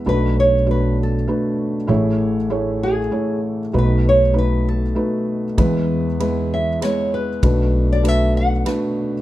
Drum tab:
RD |------|------|------|x-x-x-|
SD |------|------|------|----r-|
BD |------|------|------|o-----|

RD |x-x-x-|
SD |----r-|
BD |o-----|